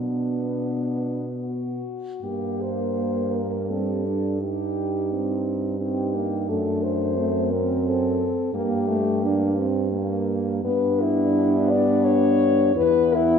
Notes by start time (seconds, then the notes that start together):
Already playing: B2 B3 D4
1.42 F#4
2.21 G2 A#3 G4
2.62 C5
3.35 A#4
3.70 G3 C4 A4
4.06 D4
4.42 G3 D#4 G4
5.11 C4
5.80 C4 D#4 G4
6.15 A#3
6.49 F#2 A3 D4 A4
6.83 C5
7.16 A3 C4
7.50 C4 A#4
7.87 A4
8.54 G2 A#3 G4
8.88 A3
9.23 A#3 D4
9.57 C4
9.92 A#3
10.63 G2 B3 D4 B4
11.01 E4
11.70 D5
12.05 C#5
12.75 E2 B3 E4 B4
13.14 E4